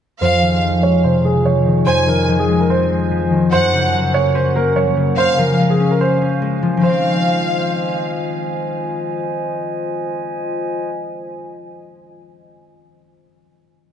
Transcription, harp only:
0.21 F2
0.42 D#3
0.62 F3
0.83 G#3
1.04 C3
1.24 G#3
1.45 F3
1.66 D#3
1.87 F2
2.08 D#3
2.28 F3
2.49 G#3
2.70 C4
2.90 G#3
3.11 F3
3.31 D#3
3.52 F#2
3.73 C#3
3.94 F#3
4.14 A#3
4.35 C#4
4.56 A#3
4.76 F#3
4.97 C#3
5.18 C#3
5.38 F3
5.59 G#3
5.80 C#4
6.01 F5
6.21 C#4
6.42 G#3
6.63 F3
6.77 D#3
6.81 F3
6.85 G#3
6.89 C4

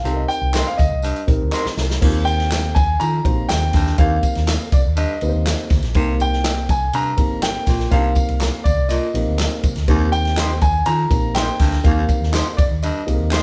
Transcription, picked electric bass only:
0.04 C2
0.42 C2
0.80 D2
0.91 C2
1.28 A#1
1.41 D2
1.65 muted picked electric bass stroke
1.77 C2
2.03 D#2
2.77 D#2
3.01 D#3
3.26 A#1
3.51 D#2
3.74 D#2
3.99 D#2
4.36 D#2
4.72 C2
4.85 D#2
5.22 D2
5.34 D#2
5.71 D2
5.83 A#1
5.96 C2
6.70 C2
6.94 C3
7.18 G1
7.67 A#1
7.92 C2
8.29 C2
8.66 D2
8.78 C2
9.14 A#1
9.27 D2
9.64 C2
9.76 D2
9.89 D#2
10.62 D#2
10.87 D#3
11.11 A#1
11.60 D2
11.85 D#2
12.21 D#2
12.59 F2
12.71 D#2
13.08 C2
13.19 D#2

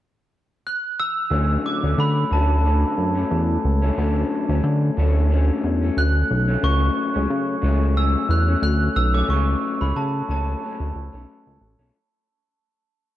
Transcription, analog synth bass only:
1.31 D2
1.83 D2
1.98 D3
2.32 D2
2.98 F#2
3.31 E2
3.64 C#2
3.98 D2
4.49 D2
4.64 D3
4.98 D2
5.64 E2
5.97 D2
6.30 B1
6.63 C#2
7.16 C#2
7.30 C#3
7.63 C#2
8.29 E2
8.62 D2
8.96 B1
9.29 C#2
9.81 C#2
9.96 C#3
10.29 C#2
10.80 D2
10.95 C#2
11.14 B1
11.47 C#2
11.61 A1
11.79 B1

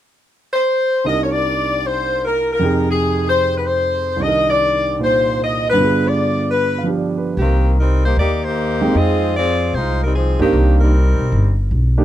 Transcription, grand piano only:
1.04 C2 C3 D4 D#4 A#4
2.59 F2 C3 D#4 G5
2.65 G#4
4.16 C2 C3
4.22 D#3 D4
4.28 A#4
4.99 A#2 D#4 F4 C5
5.73 G2 D3
5.78 B3 F4
5.84 G#4
6.78 F5
6.84 F3 D4 G4
6.98 D5
7.18 B4
8.81 G#3 C4 D#4 G5
10.39 A#3 D4 D#4 G4
11.98 A#3 D4 D#4 G4

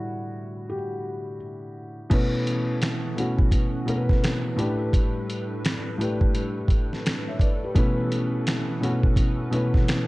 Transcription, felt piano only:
Already playing: A2 D3 G3 E4 F#4
0.69 G4
2.10 B2 A3 C#4 E4 B4
3.16 B2 A3 C#4 E4 F#4
3.86 B2 A3 C#4 E4 A#4
3.96 B4
4.56 A2 A3 D4 G4 B4
5.98 A2 A3 D4 G4 B4
7.28 C#5 E5
7.41 B4 D5
7.64 G4 B4
7.74 B2 A3 C#4 E4 B4
8.81 B2 A3 C#4 E4 F#4
9.51 B2 A3 C#4 E4 B4

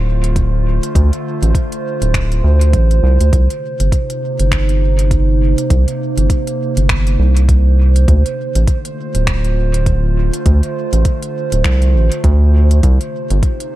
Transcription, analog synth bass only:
Already playing: D1
0.95 D2
1.42 A1
2.02 D1
2.44 D2
2.73 A1
3.03 C2
3.20 D2
3.33 C2
3.80 G1
4.40 G1
5.70 C2
6.17 G1
6.77 G1
7.19 C2
8.08 D2
8.55 A1
9.15 D1
10.46 D2
10.93 A1
11.52 D1
11.64 C2
11.94 A1
12.24 D2
12.83 C2
13.31 G1

